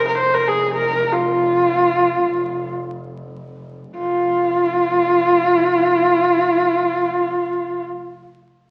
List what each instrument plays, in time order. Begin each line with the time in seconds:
Already playing: double bass F1
0.07 horsehead fiddle A#4
0.18 horsehead fiddle C5
0.34 horsehead fiddle A#4
0.48 horsehead fiddle G#4
0.74 horsehead fiddle A#4
1.12 horsehead fiddle F4
3.97 double bass F1, horsehead fiddle F4